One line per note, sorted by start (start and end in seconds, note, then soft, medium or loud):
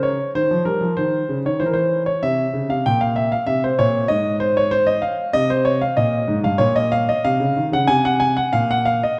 0.00 0.16 C#3 medium
0.00 0.30 C#5 medium
0.35 0.50 D#3 medium
0.35 0.62 C5 medium
0.51 0.66 F3 medium
0.65 0.81 G3 medium
0.65 0.92 A#4 medium
0.81 0.96 F3 medium
0.97 1.20 D#3 medium
0.97 1.37 C5 medium
1.29 1.44 C#3 medium
1.45 1.60 D#3 medium
1.45 1.61 C#5 medium
1.60 2.04 E3 medium
1.60 1.67 C5 medium
1.66 1.73 A#4 medium
1.74 2.01 C5 medium
2.06 2.21 C#5 medium
2.23 2.44 C3 medium
2.23 2.68 E5 loud
2.54 2.68 C#3 medium
2.69 2.83 C3 medium
2.69 2.84 F5 medium
2.86 3.31 A#2 medium
2.86 3.00 G5 loud
3.01 3.16 F5 medium
3.16 3.31 E5 medium
3.32 3.47 F5 medium
3.47 3.69 C3 medium
3.47 3.62 E5 loud
3.64 3.79 C5 medium
3.79 4.01 A#2 medium
3.79 4.10 C#5 loud
4.08 4.98 G#2 medium
4.08 4.35 D#5 medium
4.40 4.56 C5 medium
4.57 4.72 C#5 medium
4.71 4.87 C5 loud
4.87 5.02 D#5 medium
5.02 5.29 F5 medium
5.33 5.79 C3 medium
5.33 5.49 D#5 loud
5.50 5.66 C5 loud
5.65 5.81 C#5 medium
5.81 5.97 F5 medium
5.97 6.20 A#2 medium
5.97 6.37 D#5 loud
6.28 6.43 G#2 medium
6.44 6.59 G2 medium
6.44 6.60 F5 medium
6.58 7.06 A#2 medium
6.58 6.75 C#5 loud
6.76 6.92 D#5 loud
6.92 7.08 F5 loud
7.09 7.25 D#5 medium
7.24 7.40 C3 medium
7.24 7.66 F5 loud
7.40 7.56 C#3 medium
7.56 7.72 D#3 medium
7.72 7.88 C#3 medium
7.72 7.89 F#5 loud
7.87 8.35 C3 medium
7.87 8.04 G#5 loud
8.05 8.21 F#5 loud
8.20 8.37 G#5 loud
8.37 8.53 F#5 loud
8.53 8.99 A#2 medium
8.53 8.69 F5 loud
8.71 8.86 F#5 loud
8.85 9.02 F5 loud
9.03 9.19 D#5 medium